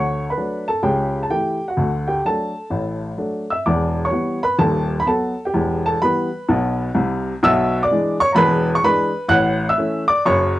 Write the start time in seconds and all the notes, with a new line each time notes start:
Already playing: D2 D3 C#5 C#6
0.30 B4 B5
0.37 F#3 A3 D4
0.68 A4 A5
0.83 C#2 C#3 G4 G5
1.23 A5
1.30 E3 A3 E4 G4 G5
1.68 F#4 F#5
1.77 D2 D3
2.08 G4 G5
2.25 F#3 A3 D4 A4 A5
2.70 A1 A2
3.17 F#3 A3 D4
3.50 E5 E6
3.66 E1 E2 D5 D6
4.05 C#5 C#6
4.11 E3 G3 B3
4.43 B4 B5
4.59 D#1 D#2 A4 A5
5.00 B5
5.06 F#3 B3 A4 A5
5.45 G4 G5
5.54 E1 E2
5.86 A4 A5
6.02 E3 G3 B3 B4 B5
6.49 B1 B2
6.94 C2 C3
7.43 B1 B2 E5 E6
7.83 D5 D6
7.91 E3 G#3 D4
8.20 C#5 C#6
8.32 E1 E2 A#5 B5
8.38 B4
8.75 C#6
8.83 E3 G#3 D4 B4 B5
9.28 A1 A2 F#5 F#6
9.69 E5 E6
9.78 E3 A3 C#4
10.08 D5 D6
10.26 F#1 F#2 C#5 C#6